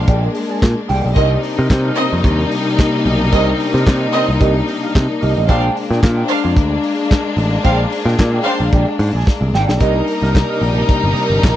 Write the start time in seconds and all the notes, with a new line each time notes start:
Already playing: G#3 A#3 D4
0.08 A#1 G#4 D5 G5, kick, closed hi-hat
0.23 muted clean electric guitar stroke
0.35 muted clean electric guitar stroke, open hi-hat
0.50 G#4 D5 G#5
0.62 A#2, kick, snare, clap, closed hi-hat
0.78 muted clean electric guitar stroke
0.88 C2 G#4 D5 G5, open hi-hat
1.04 B1 G#4 D5 G5
1.15 C2 C3 G3 A#3 C4 D#4 G4 A#4 D#5, kick, closed hi-hat
1.43 muted clean electric guitar stroke, open hi-hat
1.57 C3 G4 A#4 D#5
1.70 C3, kick, snare, clap, closed hi-hat
1.84 G4 A#4 D#5
1.96 C4 A#4 D#5, muted clean electric guitar stroke, open hi-hat
2.12 F2, muted clean electric guitar stroke
2.24 D#2, muted clean electric guitar stroke, kick, closed hi-hat
2.39 muted clean electric guitar stroke
2.51 open hi-hat
2.79 kick, snare, clap, closed hi-hat
2.93 muted clean electric guitar stroke
3.06 B1, open hi-hat
3.19 muted clean electric guitar stroke
3.32 C2 C4 G4 A#4 D#5, kick, closed hi-hat
3.48 muted clean electric guitar stroke
3.59 muted clean electric guitar stroke, open hi-hat
3.74 C3 G4 A#4 D#5, snare
3.86 C3, muted clean electric guitar stroke, kick, snare, clap, closed hi-hat
4.01 G4 A#4 D#5
4.13 C4 G4 A#4 D#5, open hi-hat
4.28 C2, muted clean electric guitar stroke
4.40 C2 G4 A#4 D#5, kick, closed hi-hat
4.55 muted clean electric guitar stroke
4.68 muted clean electric guitar stroke, open hi-hat
4.83 G4 A#4 F5
4.94 C3, muted clean electric guitar stroke, kick, snare, clap, closed hi-hat
5.09 muted clean electric guitar stroke
5.21 C2 G4 A#4 D#5, open hi-hat
5.36 A1 G4 A#4 D#5
5.47 A#1 G#3 A#3 D4 G#4 C5 D5 F5 G5, kick, closed hi-hat
5.76 muted clean electric guitar stroke, open hi-hat
5.90 A#2 G#4 D5 G5, snare
6.02 A#2, muted clean electric guitar stroke, kick, snare, clap, closed hi-hat
6.17 G#4 D5 G5
6.28 D4 C5 F5, muted clean electric guitar stroke, open hi-hat
6.44 F2, muted clean electric guitar stroke
6.56 D2, muted clean electric guitar stroke, kick, closed hi-hat
6.70 muted clean electric guitar stroke
6.83 open hi-hat
6.98 muted clean electric guitar stroke
7.10 muted clean electric guitar stroke, kick, snare, clap, closed hi-hat
7.25 muted clean electric guitar stroke
7.37 A1, open hi-hat
7.52 muted clean electric guitar stroke
7.64 A#1 D4 G#4 C5 D5 F5 G5, kick, closed hi-hat
7.79 muted clean electric guitar stroke
7.91 muted clean electric guitar stroke, open hi-hat
8.05 A#2 G#4 D5 G5, snare
8.18 A#2, muted clean electric guitar stroke, kick, snare, clap, closed hi-hat
8.34 G#4 D5 G5
8.45 D4 G#4 C5 D5 F5 G5, open hi-hat
8.60 A#1, muted clean electric guitar stroke
8.73 A#1 G#4 D5 G5, kick, closed hi-hat
8.89 muted clean electric guitar stroke
8.99 G#2, muted clean electric guitar stroke, open hi-hat
9.13 A#1 G#4 D5 G#5
9.27 muted clean electric guitar stroke, kick, snare
9.41 C2, muted clean electric guitar stroke
9.53 G#1 G#4 D5 G5, snare
9.68 B1 G#4 D5 G5, snare
9.80 C2 C3 G3 A#3 D4 D#4 G4 A#4 D#5 A#5, kick, closed hi-hat
10.08 open hi-hat
10.22 C2 G4 A#4 D#5, snare
10.35 muted clean electric guitar stroke, kick, snare, clap, closed hi-hat
10.49 G4 A#4 D#5
10.61 A#1, muted clean electric guitar stroke, open hi-hat
10.78 muted clean electric guitar stroke
10.89 muted clean electric guitar stroke, kick, closed hi-hat
11.04 G1, muted clean electric guitar stroke
11.16 open hi-hat
11.30 G1, muted clean electric guitar stroke
11.43 A#1, muted clean electric guitar stroke, kick, snare, clap, closed hi-hat